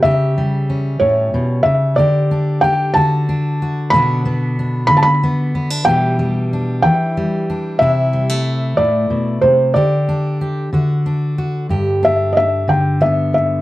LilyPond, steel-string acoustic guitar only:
\new Staff \with { instrumentName = "Steel-string acoustic guitar" } { \time 6/8 \key g \major \tempo 4. = 62 << { <g g'>8 g8 cis'2 | g'8 d'8 g'8 fis'8 d'8 fis'8 | <d b d' fis'>8 b8 d'4 b8 b16 d'16 | <e g d' g'>8 g8 d'4 g8 d'8 |
e'8 g16 a2~ a16 | g'8 d'8 g'8 fis'8 d'8 fis'8 | g'8 d'4. b4 | } \\ { cis4. a,8 b,8 cis8 | d4. d4. | b,4. d4. | b,4. e4. |
c4. a,8 b,8 c8 | d4. d4. | g,4. d4. | } >> }